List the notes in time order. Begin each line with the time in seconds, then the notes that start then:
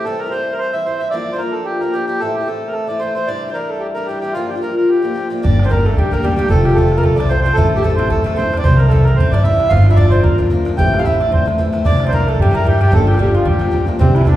0.05 C3 E3 G3 C4 E4 A4
0.19 A#4
0.26 G3 C4 E4
0.31 E3 G3 C4 E4 C5
0.52 A#4
0.59 C5
0.73 E3 G3 C4 E4 E5
0.86 E3 G3 C4 E4 C5
0.99 E3 G3 C4 E5
1.03 E4
1.10 G2 D3 F3 D5 E5
1.14 A#3 D4 F4
1.33 F3 A#3 D4 F4 C5
1.38 F3 A#3 D4 A#4
1.43 F4
1.52 A4
1.65 G4
1.80 F3 A#3 D4 F4 A#4
1.92 F3 A#3 D4 G4
1.96 F4
2.07 F3 A#3 D4 F4 G4
2.20 A2 E3 A3 C4 E4 A4
2.35 G4
2.41 A3 C4 E4
2.46 E3 A3 C4 E4 A4
2.67 A#4
2.73 A4
2.87 E3 A3 C4 E4 D5
2.99 E3 A3 C4 E4 C5
3.15 E3 A3 C4 E4 C5
3.27 C3 E3 G3 D4 E4 D5
3.48 G3 D4 E4 C5
3.54 E3 G3 D4 E4 A#4
3.69 A4
3.80 G4
3.94 E3 G3 D4 E4 A#4
4.06 E3 G3 G4
4.10 D4 E4
4.20 E3 G3 D4 G4
4.24 E4
4.33 G2 D3 F3 A#3 D4 F4
4.48 G4
4.55 F3 A#3 D4 F4
4.62 F3 A#3 D4 F4 A#4
4.77 A#4
4.89 G4
5.02 F3 A#3 D4 F4
5.14 F3 A#3 D4 F4
5.30 F3 A#3 D4 F4
5.42 G1 G3 A#3 D4 G4 D5, bodhran
5.59 G4, bodhran
5.64 A#3 C4 D4 C5, bodhran
5.69 G3 A#3 D4 G4 A#4, bodhran
5.85 A3 A4, bodhran
5.93 D2 G4, bodhran
5.98 G3 G4, bodhran
6.11 D2 G3 A#3 D4 G4 A#4, bodhran
6.22 G3 A#3 D4 G4, bodhran
6.36 G3 A#3 D4 G4, bodhran
6.48 F1 F3 A3 C4 F4 A4, bodhran
6.65 G3 G4, bodhran
6.69 A3 C4 F4, bodhran
6.75 F3 A3 C4 F4 A4, bodhran
6.92 bodhran
6.97 A#3 A#4, bodhran
7.03 C2 A3 A4, bodhran
7.15 C2 F3 A3 C4 F4 D5
7.20 D4, bodhran
7.28 F3 A3 C4 D4 F4 C5, bodhran
7.42 F3 C5
7.46 A3 C4 F4, bodhran
7.54 A1 A2 E3 C4 A4, bodhran
7.58 A3 E4
7.76 G3 A3 C4 E4 G4
7.82 E3 A3 C4 E4 A4, bodhran
7.96 C4 C5, bodhran
8.06 bodhran
8.10 E2 A3 A4, bodhran
8.24 E2 E3 A3 C4 E4 A4, bodhran
8.36 E3 A3 C4 E4 C5, bodhran
8.52 E3 A3 C4 E4, bodhran
8.57 D4 D5
8.64 C2 C3 E3 G3 C4 E4 C5, bodhran
8.77 A#3 A#4, bodhran
8.86 G3 C4 E4 A4 A#4
8.90 E3 G3 A3 C4 E4 A4, bodhran
9.04 A#3 A#4, bodhran
9.13 C5, bodhran
9.18 G2 C4 C5, bodhran
9.31 G2 E3 G3 C4 D4 E4 D5, bodhran
9.43 E3 G3 C4 E4 E5, bodhran
9.58 E3 G3 C4 E4, bodhran
9.69 G1 G2 D3 F3 A#3 D4 F4 F5, bodhran
9.77 F4
9.82 F4
9.86 F4, bodhran
9.90 F3 A#3 D4 E4 E5, bodhran
9.96 F3 A#3 D4 F4 D5, bodhran
10.10 C4 C5, bodhran
10.18 bodhran
10.23 D2 A#3 A#4, bodhran
10.38 D2 F3 A#3 D4 F4, bodhran
10.50 F3 A#3 D4 F4, bodhran
10.65 F3 A#3 D4 F4, bodhran
10.77 A1 A2 E3 A3 C4 E4 G4 G5, bodhran
10.94 F5, bodhran
10.98 A3 C4 E4 F4 F5, bodhran
11.03 A3 C4 E4 E5, bodhran
11.20 D4 D5, bodhran
11.28 E2 C4 C5, bodhran
11.33 C5, bodhran
11.45 E2 E3 A3 C4 E4, bodhran
11.58 E3 A3 C4 E4, bodhran
11.72 E3 A3 C4 E4, bodhran
11.84 C2 C3 E3 G3 D4 E4 D5, bodhran
12.00 bodhran
12.05 G3 C4 D4 E4 C5, bodhran
12.11 E3 G3 A#3 D4 E4 A#4, bodhran
12.27 A3 A4, bodhran
12.34 bodhran
12.39 G2 G3 G4, bodhran
12.51 G2 E3 G3 A#3 D4 E4 A#4, bodhran
12.55 A#4
12.64 E3 G3 D4 E4 G4, bodhran
12.68 G4
12.78 E3 G3 D4 E4 G4, bodhran
12.91 G1 G2 D3 F3 A3 A#3 D4 F4 A4, bodhran
13.07 G3 G4, bodhran
13.12 F3 A#3 D4 F4, bodhran
13.17 F3 G3 A#3 D4 F4 G4, bodhran
13.35 F3 F4, bodhran
13.41 bodhran
13.45 D2 G3 G4, bodhran
13.59 D2 F3 A#3 D4 F4, bodhran
13.71 F3 A#3 D4 F4, bodhran
13.86 F3 A#3 D4 F4, bodhran
13.99 C2 C3 E3 G3 C4 D4, bodhran
14.14 E3 E4, bodhran
14.21 E3 E4, bodhran
14.26 D3 G3 C4 D4, bodhran